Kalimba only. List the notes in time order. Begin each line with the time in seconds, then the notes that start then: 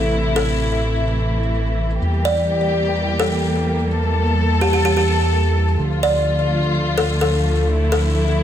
Already playing: A4
0.36 A4
2.25 D5
3.20 A4
4.61 G4
4.73 G4
4.85 G4
4.97 G4
6.03 D5
6.98 A4
7.21 A4
7.92 A4